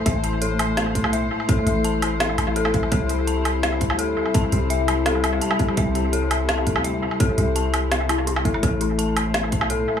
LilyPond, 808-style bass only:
\new Staff \with { instrumentName = "808-style bass" } { \clef bass \time 4/4 \key a \minor \tempo 4 = 168 a,,2~ a,,8. b,,8. r8 | r8 a,,2 a,,4. | c,2~ c,8. d,8. r8 | r8 c,2~ c,8 r4 |
c,2~ c,8. d,8. r8 | r8 c,2. g,,8 | a,,2~ a,,8. b,,8. r8 | }